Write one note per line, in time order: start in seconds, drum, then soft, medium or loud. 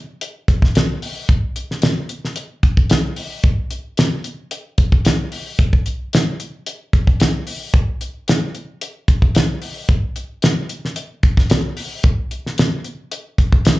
0.21 closed hi-hat medium
0.48 kick medium
0.48 closed hi-hat medium
0.62 kick medium
0.62 snare soft
0.75 snare loud
0.75 closed hi-hat medium
1.02 open hi-hat medium
1.29 kick loud
1.29 closed hi-hat medium
1.56 closed hi-hat medium
1.71 snare soft
1.82 snare loud
1.82 closed hi-hat medium
2.09 closed hi-hat medium
2.25 snare soft
2.36 closed hi-hat medium
2.63 kick medium
2.63 closed hi-hat medium
2.77 kick medium
2.90 snare loud
2.90 closed hi-hat medium
3.16 open hi-hat medium
3.44 kick loud
3.44 closed hi-hat medium
3.71 closed hi-hat medium
3.97 snare loud
3.97 closed hi-hat medium
4.24 closed hi-hat medium
4.51 closed hi-hat medium
4.78 kick medium
4.78 closed hi-hat medium
4.92 kick medium
5.05 snare loud
5.05 closed hi-hat medium
5.32 open hi-hat medium
5.59 kick loud
5.59 closed hi-hat medium
5.73 kick medium
5.86 closed hi-hat medium
6.13 snare medium
6.13 closed hi-hat medium
6.40 closed hi-hat medium
6.66 closed hi-hat medium
6.93 kick medium
6.93 closed hi-hat medium
7.07 kick medium
7.20 snare loud
7.20 closed hi-hat medium
7.47 open hi-hat medium
7.74 kick loud
7.74 closed hi-hat medium
8.01 closed hi-hat medium
8.28 snare loud
8.28 closed hi-hat medium
8.55 closed hi-hat medium
8.81 closed hi-hat medium
9.08 kick medium
9.08 closed hi-hat medium
9.22 kick medium
9.35 snare loud
9.35 closed hi-hat medium
9.62 open hi-hat medium
9.89 kick loud
9.89 closed hi-hat medium
10.16 closed hi-hat medium
10.42 snare loud
10.42 closed hi-hat medium
10.69 closed hi-hat medium
10.85 snare soft
10.96 closed hi-hat medium
11.23 kick medium
11.23 closed hi-hat medium
11.37 kick medium
11.37 snare soft
11.50 snare loud
11.50 closed hi-hat medium
11.77 open hi-hat medium
12.04 kick loud
12.04 closed hi-hat medium
12.31 closed hi-hat medium
12.46 snare soft
12.58 snare loud
12.58 closed hi-hat medium
12.84 closed hi-hat medium
13.11 closed hi-hat medium
13.38 kick medium
13.38 closed hi-hat medium
13.52 kick medium
13.65 snare loud
13.65 closed hi-hat medium